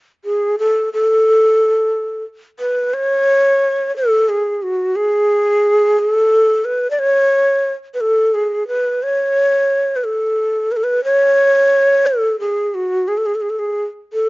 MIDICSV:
0, 0, Header, 1, 2, 480
1, 0, Start_track
1, 0, Tempo, 675828
1, 646, Time_signature, 6, 3, 24, 8
1, 10151, End_track
2, 0, Start_track
2, 0, Title_t, "Ney"
2, 0, Program_c, 0, 77
2, 175, Note_on_c, 0, 68, 77
2, 394, Note_off_c, 0, 68, 0
2, 417, Note_on_c, 0, 69, 91
2, 635, Note_off_c, 0, 69, 0
2, 660, Note_on_c, 0, 69, 102
2, 1585, Note_off_c, 0, 69, 0
2, 1843, Note_on_c, 0, 71, 86
2, 2087, Note_on_c, 0, 73, 106
2, 2097, Note_off_c, 0, 71, 0
2, 2807, Note_off_c, 0, 73, 0
2, 2818, Note_on_c, 0, 69, 85
2, 3046, Note_on_c, 0, 68, 74
2, 3057, Note_off_c, 0, 69, 0
2, 3286, Note_on_c, 0, 66, 79
2, 3297, Note_off_c, 0, 68, 0
2, 3521, Note_on_c, 0, 68, 92
2, 3532, Note_off_c, 0, 66, 0
2, 4253, Note_off_c, 0, 68, 0
2, 4253, Note_on_c, 0, 68, 93
2, 4331, Note_off_c, 0, 68, 0
2, 4331, Note_on_c, 0, 69, 93
2, 4722, Note_on_c, 0, 71, 91
2, 4733, Note_off_c, 0, 69, 0
2, 4900, Note_off_c, 0, 71, 0
2, 4904, Note_on_c, 0, 74, 73
2, 4965, Note_on_c, 0, 73, 108
2, 4976, Note_off_c, 0, 74, 0
2, 5495, Note_off_c, 0, 73, 0
2, 5639, Note_on_c, 0, 71, 66
2, 5686, Note_on_c, 0, 69, 88
2, 5697, Note_off_c, 0, 71, 0
2, 5927, Note_on_c, 0, 68, 76
2, 5937, Note_off_c, 0, 69, 0
2, 6157, Note_off_c, 0, 68, 0
2, 6161, Note_on_c, 0, 71, 90
2, 6412, Note_on_c, 0, 73, 94
2, 6422, Note_off_c, 0, 71, 0
2, 7074, Note_on_c, 0, 71, 63
2, 7085, Note_off_c, 0, 73, 0
2, 7133, Note_on_c, 0, 69, 81
2, 7143, Note_off_c, 0, 71, 0
2, 7611, Note_on_c, 0, 71, 80
2, 7622, Note_off_c, 0, 69, 0
2, 7646, Note_on_c, 0, 69, 71
2, 7656, Note_off_c, 0, 71, 0
2, 7697, Note_on_c, 0, 71, 87
2, 7707, Note_off_c, 0, 69, 0
2, 7837, Note_off_c, 0, 71, 0
2, 7841, Note_on_c, 0, 73, 101
2, 8568, Note_on_c, 0, 69, 82
2, 8578, Note_off_c, 0, 73, 0
2, 8802, Note_off_c, 0, 69, 0
2, 8807, Note_on_c, 0, 68, 72
2, 9053, Note_on_c, 0, 66, 75
2, 9063, Note_off_c, 0, 68, 0
2, 9289, Note_on_c, 0, 68, 65
2, 9300, Note_off_c, 0, 66, 0
2, 9357, Note_on_c, 0, 69, 69
2, 9368, Note_off_c, 0, 68, 0
2, 9418, Note_on_c, 0, 68, 66
2, 9428, Note_off_c, 0, 69, 0
2, 9481, Note_on_c, 0, 69, 68
2, 9492, Note_off_c, 0, 68, 0
2, 9527, Note_on_c, 0, 68, 66
2, 9538, Note_off_c, 0, 69, 0
2, 9587, Note_on_c, 0, 69, 68
2, 9598, Note_off_c, 0, 68, 0
2, 9653, Note_on_c, 0, 68, 74
2, 9663, Note_off_c, 0, 69, 0
2, 9828, Note_off_c, 0, 68, 0
2, 10037, Note_on_c, 0, 69, 83
2, 10151, Note_off_c, 0, 69, 0
2, 10151, End_track
0, 0, End_of_file